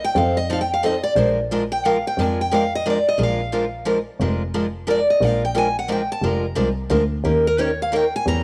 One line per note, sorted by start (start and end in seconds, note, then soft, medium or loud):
0.04 0.17 G5 loud
0.15 0.97 F2 loud
0.15 0.36 F3 medium
0.15 0.36 C4 medium
0.15 0.36 D#4 medium
0.15 0.37 A4 medium
0.15 0.37 F5 medium
0.37 0.50 D#5 loud
0.50 0.61 F3 medium
0.50 0.61 C4 medium
0.50 0.61 D#4 medium
0.50 0.61 A4 loud
0.50 0.60 F5 medium
0.61 0.72 G5 medium
0.74 0.84 F5 loud
0.83 0.94 F3 medium
0.83 0.94 C4 medium
0.83 0.95 D#4 medium
0.83 0.95 A4 loud
0.83 1.03 D#5 medium
1.03 1.16 D5 loud
1.16 1.97 A#1 medium
1.16 1.38 F3 medium
1.16 1.38 G#3 medium
1.16 1.38 D4 medium
1.16 1.38 F4 medium
1.16 1.38 A#4 medium
1.16 1.29 C5 medium
1.51 1.62 F3 medium
1.51 1.62 G#3 medium
1.51 1.62 D4 medium
1.51 1.62 F4 loud
1.51 1.63 A#4 loud
1.72 1.86 G5 loud
1.85 1.96 F3 medium
1.85 1.96 G#3 medium
1.85 1.96 D4 medium
1.85 1.96 F4 loud
1.85 1.96 A#4 loud
1.85 2.05 F5 loud
2.07 2.21 G5 loud
2.18 2.99 F2 medium
2.18 2.39 F3 medium
2.18 2.39 G#3 medium
2.18 2.39 D4 medium
2.18 2.39 F4 medium
2.18 2.39 A#4 medium
2.18 2.39 G#5 loud
2.41 2.53 G5 medium
2.51 2.63 F3 medium
2.51 2.63 G#3 medium
2.51 2.63 D4 medium
2.51 2.63 F4 medium
2.51 2.63 A#4 loud
2.51 2.73 F5 medium
2.75 2.87 D#5 loud
2.86 2.97 F3 medium
2.86 2.97 G#3 medium
2.86 2.97 D4 medium
2.86 2.97 F4 loud
2.86 2.97 A#4 loud
2.90 3.08 D5 medium
3.09 3.20 D#5 loud
3.18 4.00 A#1 medium
3.18 3.39 F3 medium
3.18 3.39 G#3 medium
3.18 3.39 D4 medium
3.18 3.40 F4 medium
3.18 3.40 A#4 medium
3.23 3.85 F5 medium
3.52 3.64 F3 medium
3.52 3.64 G#3 medium
3.52 3.64 D4 medium
3.52 3.64 F4 medium
3.52 3.64 A#4 medium
3.85 3.97 F3 medium
3.85 3.97 G#3 medium
3.85 3.97 D4 medium
3.85 3.98 F4 medium
3.85 3.98 A#4 medium
4.20 5.01 F1 medium
4.20 4.41 F3 medium
4.20 4.41 G#3 medium
4.20 4.41 D4 medium
4.20 4.42 F4 medium
4.20 4.41 A#4 medium
4.54 4.65 F3 medium
4.54 4.65 G#3 medium
4.54 4.65 D4 medium
4.54 4.65 F4 medium
4.54 4.65 A#4 medium
4.87 4.98 F3 medium
4.87 4.99 G#3 medium
4.87 4.99 D4 medium
4.87 4.99 F4 loud
4.87 4.99 A#4 loud
4.87 5.09 D5 medium
5.10 5.24 D#5 medium
5.21 6.03 A#1 loud
5.21 5.43 F3 medium
5.21 5.43 G#3 medium
5.21 5.43 D4 medium
5.21 5.43 F4 medium
5.21 5.43 A#4 medium
5.21 5.43 F5 medium
5.45 5.57 G5 medium
5.55 5.66 F3 medium
5.55 5.66 G#3 medium
5.55 5.67 D4 medium
5.55 5.66 F4 loud
5.55 5.67 A#4 medium
5.55 5.77 G#5 loud
5.79 5.91 F#5 loud
5.88 6.00 F3 medium
5.88 6.00 G#3 medium
5.88 6.00 D4 medium
5.88 6.00 F4 medium
5.88 6.00 A#4 loud
5.88 6.11 G5 medium
6.12 6.27 A5 loud
6.22 6.50 F1 medium
6.22 6.44 F3 medium
6.22 6.44 G#3 medium
6.22 6.44 D4 medium
6.22 6.44 F4 medium
6.22 6.44 A#4 medium
6.27 6.79 A#5 loud
6.55 6.86 C2 medium
6.55 6.67 F3 medium
6.55 6.67 G#3 medium
6.55 6.68 D4 loud
6.55 6.68 F4 medium
6.55 6.68 A#4 medium
6.90 7.20 D2 loud
6.90 7.01 F3 medium
6.90 7.02 G#3 medium
6.90 7.02 D4 medium
6.90 7.02 F4 medium
6.90 7.02 A#4 medium
7.24 8.06 D#2 medium
7.24 7.45 D#3 medium
7.24 7.45 A#3 medium
7.24 7.45 C#4 medium
7.24 7.46 G4 medium
7.24 7.46 A#4 medium
7.47 7.61 A#4 medium
7.58 7.70 D#3 medium
7.58 7.70 A#3 medium
7.58 7.70 C#4 medium
7.58 7.70 G4 medium
7.58 7.70 A#4 loud
7.58 7.80 C#5 medium
7.82 7.94 F5 loud
7.92 8.03 D#3 medium
7.92 8.04 A#3 medium
7.92 8.04 C#4 medium
7.92 8.04 G4 medium
7.92 8.04 A#4 loud
7.92 8.14 G5 medium
8.16 8.27 G#5 loud
8.26 8.44 E2 medium
8.26 8.44 E3 medium
8.26 8.44 A#3 medium
8.26 8.44 C#4 medium
8.26 8.44 G4 medium
8.26 8.44 A#5 loud